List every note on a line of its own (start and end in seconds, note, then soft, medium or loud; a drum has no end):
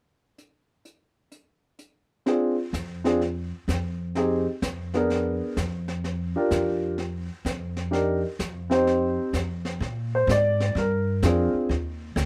0.38 closed hi-hat soft
0.85 closed hi-hat soft
1.32 closed hi-hat soft
1.79 closed hi-hat soft
2.26 2.54 C4 soft
2.26 2.54 D4 soft
2.26 2.55 F4 soft
2.26 2.55 G#4 medium
2.26 brush sweep soft
2.26 snare soft
2.73 3.51 F2 medium
2.73 snare soft
2.73 hi-hat pedal soft
3.04 3.19 C4 medium
3.04 3.19 D4 medium
3.04 3.19 F4 medium
3.04 3.20 G#4 medium
3.04 snare soft
3.21 brush sweep soft
3.21 snare soft
3.68 4.45 F2 medium
3.68 snare soft
3.68 hi-hat pedal soft
4.15 4.43 C4 medium
4.15 4.44 D#4 soft
4.15 4.44 G4 soft
4.15 4.44 G#4 medium
4.15 brush sweep soft
4.15 snare soft
4.62 5.40 F2 medium
4.62 snare soft
4.62 hi-hat pedal soft
4.94 5.54 B3 medium
4.94 5.54 D4 medium
4.94 5.55 G#4 medium
4.94 5.55 A#4 medium
4.94 snare soft
5.10 brush sweep soft
5.10 snare soft
5.57 6.34 F2 medium
5.57 snare medium
5.57 hi-hat pedal soft
5.88 snare soft
6.04 brush sweep soft
6.04 snare soft
6.36 6.95 D4 medium
6.36 6.96 F4 medium
6.36 6.96 G4 soft
6.36 6.96 A#4 medium
6.51 7.28 F2 medium
6.51 snare soft
6.51 hi-hat pedal medium
6.98 brush sweep soft
6.98 snare soft
7.45 8.22 F2 medium
7.45 snare soft
7.45 hi-hat pedal soft
7.77 snare soft
7.91 8.20 D4 medium
7.91 8.20 D#4 soft
7.91 8.20 G4 soft
7.91 8.20 A#4 medium
7.91 brush sweep soft
7.91 snare soft
8.39 9.17 F2 medium
8.39 snare soft
8.39 hi-hat pedal soft
8.70 9.30 C4 medium
8.70 9.31 D#4 medium
8.70 9.31 G4 medium
8.70 9.31 C5 medium
8.70 snare soft
8.87 brush sweep soft
8.87 snare soft
9.33 9.77 F2 medium
9.33 snare medium
9.33 hi-hat pedal medium
9.65 snare soft
9.80 10.27 A#2 medium
9.80 brush sweep soft
9.80 snare soft
10.15 10.29 C5 medium
10.27 10.73 G#2 medium
10.27 snare medium
10.27 hi-hat pedal medium
10.31 10.74 D5 medium
10.60 snare soft
10.75 11.21 G2 medium
10.75 11.51 A#4 medium
10.75 brush sweep soft
10.75 snare soft
11.22 11.51 F2 medium
11.22 11.70 C4 medium
11.22 11.70 D4 medium
11.22 11.71 F4 medium
11.22 11.71 G#4 medium
11.22 snare medium
11.22 hi-hat pedal medium
11.54 muted upright bass stroke soft
11.69 12.15 D#2 medium
11.69 brush sweep soft
11.69 snare soft
12.16 12.26 D2 medium
12.16 snare medium
12.16 hi-hat pedal medium